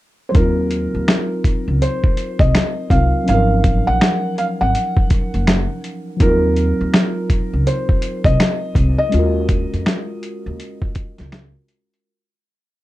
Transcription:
0.29 synth keys F#3, felt piano C5
0.34 upright bass D#2, synth keys C4 D#4, felt piano A#4, kick, closed hi-hat
0.39 synth keys F4 A#4
0.71 closed hi-hat
0.95 upright bass D#2
1.08 finger snap, snare, closed hi-hat
1.44 kick, closed hi-hat
1.68 upright bass C#2
1.82 felt piano C5, closed hi-hat
2.04 kick
2.17 closed hi-hat
2.39 upright bass C2, felt piano D#5, kick, closed hi-hat
2.55 finger snap, snare, closed hi-hat
2.89 upright bass C2, synth keys F#3 C4 D#4 F4, felt piano F5, kick, closed hi-hat
2.94 synth keys A#4
3.24 synth keys F#3 C#4, closed hi-hat
3.29 upright bass G#1, synth keys F3 D#4, felt piano F5
3.34 synth keys A#4
3.64 kick, closed hi-hat
3.87 upright bass A#1, felt piano F#5
4.01 finger snap, snare, closed hi-hat
4.38 felt piano F5, closed hi-hat
4.61 upright bass G#1, felt piano F#5
4.75 closed hi-hat
4.97 kick
5.10 kick, closed hi-hat
5.34 upright bass F#1, closed hi-hat
5.47 finger snap, snare, closed hi-hat
5.84 closed hi-hat
6.17 synth keys F3 C4, kick, closed hi-hat
6.21 upright bass D#2, synth keys F#3 D#4 F4, felt piano A#4
6.27 synth keys A#4
6.56 closed hi-hat
6.81 upright bass D#2
6.94 finger snap, snare, closed hi-hat
7.30 kick, closed hi-hat
7.53 upright bass C#2
7.67 felt piano C5, closed hi-hat
7.89 kick
8.02 closed hi-hat
8.24 upright bass C2, felt piano D#5, kick, closed hi-hat
8.40 finger snap, snare, closed hi-hat
8.75 upright bass C2, kick, closed hi-hat
8.98 felt piano D#5
9.09 synth keys G#3 C#4, closed hi-hat
9.14 upright bass D#2, synth keys F4 F#4
9.19 synth keys A#4
9.49 kick, closed hi-hat
9.73 upright bass F2, closed hi-hat
9.86 finger snap, snare, closed hi-hat
10.23 closed hi-hat
10.46 upright bass D#2
10.60 closed hi-hat
10.82 kick
10.95 kick, closed hi-hat
11.18 upright bass C#2, snare, closed hi-hat
11.32 finger snap, snare, closed hi-hat
11.68 closed hi-hat
11.94 closed hi-hat

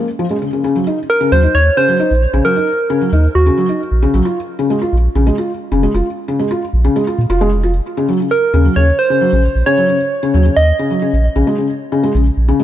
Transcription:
0.19 felt piano F3
0.30 felt piano G#3
0.42 felt piano C#3
0.53 felt piano C#3
0.64 felt piano C#3
0.76 felt piano F#3
0.87 felt piano D#4
1.10 soft synth lead A#4
1.21 felt piano C#3
1.32 sub bass D#2, felt piano F#3, soft synth lead C5
1.43 felt piano D#4
1.55 sub bass D#2, soft synth lead C#5
1.77 felt piano C#3, soft synth lead C5
1.88 felt piano F#3
2.00 felt piano D#4
2.11 sub bass A#1
2.33 sub bass A#1, felt piano C#3
2.45 felt piano F#3, soft synth lead A#4
2.56 felt piano D#4
2.90 felt piano C#3
3.01 felt piano F#3
3.12 sub bass D#2, felt piano D#4
3.35 sub bass D#2, soft synth lead F#4
3.46 felt piano C#3
3.58 felt piano F#3
3.69 felt piano D#4
3.91 sub bass A#1
4.03 felt piano C#3
4.14 sub bass A#1, felt piano F#3
4.25 felt piano F4
4.59 felt piano C#3
4.70 felt piano G#3
4.82 felt piano F4
4.93 sub bass A#1
5.15 sub bass A#1, felt piano C#3
5.27 felt piano G#3
5.38 felt piano F4
5.72 sub bass F1, felt piano C#3
5.83 felt piano G#3
5.94 sub bass F1, felt piano F4
6.28 felt piano C#3
6.39 felt piano G#3
6.51 felt piano F4
6.73 sub bass A#1
6.85 felt piano C#3
6.96 felt piano G#3
7.07 felt piano F4
7.18 sub bass A#2
7.30 sub bass F1, felt piano F4
7.41 felt piano G#3
7.63 felt piano F4
7.97 felt piano C#3
8.09 felt piano F#3
8.20 felt piano C#3
8.31 soft synth lead A#4
8.54 sub bass D#2, felt piano C#3
8.65 felt piano F#3
8.76 sub bass D#2, felt piano C#3, soft synth lead C#5
8.99 soft synth lead C5
9.10 felt piano C#3
9.21 felt piano F#3
9.33 sub bass A#1, felt piano C#3
9.55 sub bass A#1
9.66 felt piano C#3, soft synth lead C#5
9.78 felt piano F#3
9.89 felt piano C#3
10.23 felt piano C#3
10.34 sub bass D#2, felt piano F#3
10.45 felt piano C#3
10.56 sub bass D#2, soft synth lead D#5
10.79 felt piano C#3
10.91 felt piano F#3
11.02 felt piano C#3
11.13 sub bass A#1
11.36 sub bass A#1, felt piano C#3
11.47 felt piano G#3
11.58 felt piano C#3
11.92 felt piano C#3
12.03 felt piano G#3
12.15 sub bass A#1, felt piano C#3
12.37 sub bass A#1
12.48 felt piano C#3
12.60 felt piano G#3

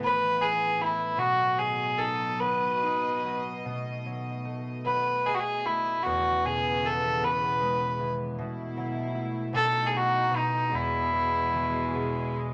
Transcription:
Already playing: string section A2 E3 B3, harp A2 A3
0.00 harp E3, fiddle B4
0.38 harp B3, fiddle G#4
0.78 harp A3, fiddle E4
1.17 harp B2, string section B2 F#3 D#5, fiddle F#4
1.58 harp F#3, fiddle G#4
1.99 harp D#4, fiddle A4
2.40 harp F#3, fiddle B4
2.83 harp D#4
3.25 harp F#3
3.65 harp B2, string section A3
4.06 harp F#3
4.45 harp A3
4.85 harp F#3, fiddle B4
5.26 fiddle G#4, harp D#5
5.34 fiddle F#4
5.40 fiddle G#4
5.66 harp A3, fiddle E4
6.03 string section E2 C#3 B3, harp E2, fiddle F#4
6.45 harp B2, fiddle G#4
6.84 harp E3, fiddle A4
7.22 harp B2, fiddle B4
7.60 harp G#3
7.99 harp E3
8.37 string section B2 A3 E4, harp B2
8.77 harp F#3
9.15 harp E4
9.52 string section B2 D#4, harp B2, fiddle A4
9.87 fiddle G#4
9.92 harp F#3
9.96 fiddle F#4
10.31 harp B2
10.36 fiddle D#4
10.70 string section E2 G#3, harp E2
10.75 fiddle E4
11.13 harp B2
11.54 harp E3
11.95 harp B2
12.36 harp G#3

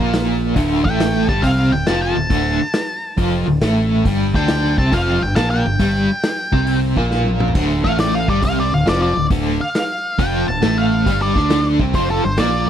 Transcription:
0.00 fingered electric bass A#1, overdriven electric guitar A#2 A#3
0.13 snare, open hi-hat
0.56 fingered electric bass D1, overdriven electric guitar D2 D3, kick, open hi-hat
0.85 fingered electric bass A1, overdriven electric guitar A2 A3, lead electric guitar G5, kick
1.00 snare, open hi-hat
1.29 fingered electric bass G1, overdriven electric guitar G2 G3, lead electric guitar A5, kick
1.43 fingered electric bass C2, overdriven electric guitar C3 C4, lead electric guitar F5, kick, open hi-hat
1.72 fingered electric bass D1, overdriven electric guitar D2, lead electric guitar G5
1.86 fingered electric bass F1, overdriven electric guitar F2 F3, lead electric guitar A5, snare, open hi-hat
2.02 lead electric guitar A5
2.16 fingered electric bass D1, overdriven electric guitar D2
2.30 fingered electric bass D1, overdriven electric guitar D2 D3, kick, open hi-hat
2.73 snare, open hi-hat
3.17 fingered electric bass F1, overdriven electric guitar F2 F3, kick, open hi-hat
3.48 fingered electric bass D1, overdriven electric guitar D2
3.61 fingered electric bass A1, overdriven electric guitar A2 A3, snare, open hi-hat
4.05 fingered electric bass G1, overdriven electric guitar G2 G3, kick, open hi-hat
4.34 fingered electric bass D2, overdriven electric guitar D3 D4, lead electric guitar G5, kick, snare
4.48 snare, open hi-hat
4.78 fingered electric bass C2, overdriven electric guitar C3 C4, lead electric guitar A5, kick
4.92 fingered electric bass F1, overdriven electric guitar F2 F3, lead electric guitar F5, kick, open hi-hat
5.20 fingered electric bass G1, overdriven electric guitar G2, lead electric guitar G5
5.35 fingered electric bass A#1, overdriven electric guitar A#2 A#3, lead electric guitar A5, snare, open hi-hat
5.50 lead electric guitar G5
5.65 fingered electric bass G1, overdriven electric guitar G2
5.79 fingered electric bass G1, overdriven electric guitar G2 G3, kick, open hi-hat
6.23 snare, open hi-hat
6.52 fingered electric bass C2, overdriven electric guitar C3 C4, kick
6.67 open hi-hat
6.97 fingered electric bass A#1, overdriven electric guitar A#2 A#3, kick
7.11 snare
7.25 high tom
7.40 mid tom
7.48 floor tom
7.55 fingered electric bass D1, overdriven electric guitar D2 D3, kick, open hi-hat, crash
7.84 fingered electric bass A1, overdriven electric guitar A2 A3, lead electric guitar F5, kick, snare
7.98 lead electric guitar D5, snare, open hi-hat
8.15 lead electric guitar F5
8.28 fingered electric bass G1, overdriven electric guitar G2 G3, lead electric guitar D5, kick
8.42 fingered electric bass C2, overdriven electric guitar C3 C4, lead electric guitar F5, kick, open hi-hat
8.60 lead electric guitar D5
8.71 fingered electric bass D1, overdriven electric guitar D2, lead electric guitar F5
8.86 fingered electric bass F1, overdriven electric guitar F2 F3, lead electric guitar D5, snare, open hi-hat
9.03 lead electric guitar D5
9.16 fingered electric bass D1, overdriven electric guitar D2
9.31 fingered electric bass D1, overdriven electric guitar D2 D3, kick, open hi-hat
9.61 lead electric guitar F5
9.75 lead electric guitar F5, snare, open hi-hat
10.19 fingered electric bass F1, overdriven electric guitar F2 F3, lead electric guitar G5, kick, open hi-hat
10.48 fingered electric bass D1, overdriven electric guitar D2, lead electric guitar A5
10.62 fingered electric bass A1, overdriven electric guitar A2 A3, snare, open hi-hat
10.78 lead electric guitar F5
11.06 fingered electric bass G1, overdriven electric guitar G2 G3, kick, open hi-hat
11.22 lead electric guitar D5
11.36 fingered electric bass D2, overdriven electric guitar D3 D4, kick, snare
11.50 snare, open hi-hat
11.80 fingered electric bass C2, overdriven electric guitar C3 C4, kick
11.94 fingered electric bass F1, overdriven electric guitar F2 F3, lead electric guitar C5, kick, open hi-hat
12.10 lead electric guitar A4
12.24 fingered electric bass G1, overdriven electric guitar G2, lead electric guitar C5
12.37 fingered electric bass A#1, overdriven electric guitar A#2 A#3, lead electric guitar D5, snare, open hi-hat

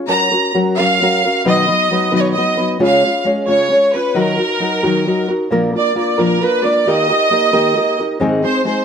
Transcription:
0.07 nylon-string guitar F#3 C#4 F#4 A#4, violin section A#5
0.31 nylon-string guitar C#4 F#4 A#4
0.54 nylon-string guitar F#3 C#4 F#4 A#4
0.77 nylon-string guitar F#3 C#4 F#4 A#4, violin section F5
1.01 nylon-string guitar F#3 C#4 F#4 A#4
1.25 nylon-string guitar C#4 F#4 A#4
1.45 nylon-string guitar B2 D#3 F#3 B3 D#4 B4, violin section D#5
1.67 nylon-string guitar F#3 B3 D#4 B4
1.91 nylon-string guitar F#3 B3 D#4 B4
2.12 nylon-string guitar B2 D#3 F#3 B3 D#4 B4
2.16 violin section D#5
2.20 violin section C#5
2.32 violin section D#5
2.37 nylon-string guitar F#3 B3 D#4 B4
2.57 nylon-string guitar F#3 B3 D#4 B4
2.79 nylon-string guitar C#3 G#3 C#4 F4 C#5
2.84 violin section F5
3.04 nylon-string guitar C#4 F4 C#5
3.25 nylon-string guitar G#3 C#4 F4 C#5
3.47 nylon-string guitar C#3 G#3 C#4 F4 C#5, violin section C#5
3.70 nylon-string guitar G#3 C#4 F4 C#5
3.94 nylon-string guitar C#4 F4 C#5, violin section B4
4.14 nylon-string guitar D#3 F#3 D#4 F#4 A#4, violin section A#4
4.38 nylon-string guitar D#4 F#4 A#4
4.60 nylon-string guitar F#3 D#4 F#4 A#4
4.83 nylon-string guitar D#3 F#3 D#4 F#4 A#4
5.07 nylon-string guitar F#3 D#4 F#4 A#4
5.28 nylon-string guitar D#4 F#4 A#4
5.51 nylon-string guitar A#2 F3 A#3 D4 F4 A#4
5.73 nylon-string guitar A#3 D4 F4 A#4
5.78 violin section D5
5.95 nylon-string guitar A#3 D4 F4 A#4, violin section D5
6.18 nylon-string guitar A#2 F3 A#3 D4 F4 A#4, violin section A#4
6.41 nylon-string guitar A#3 D4 F4 A#4, violin section B4
6.63 nylon-string guitar A#3 D4 F4 A#4, violin section D5
6.87 nylon-string guitar D#3 A#3 D#4 G4 A#4, violin section D#5
7.09 nylon-string guitar D#4 G4 A#4
7.31 nylon-string guitar A#3 D#4 G4 A#4
7.53 nylon-string guitar D#3 A#3 D#4 G4 A#4
7.76 nylon-string guitar A#3 D#4 G4 A#4
7.99 nylon-string guitar D#4 G4 A#4
8.20 nylon-string guitar G#2 D#3 G#3 C4 D#4 G#4
8.44 nylon-string guitar G#3 C4 D#4 G#4, violin section C5
8.65 nylon-string guitar G#3 C4 D#4 G#4, violin section C5

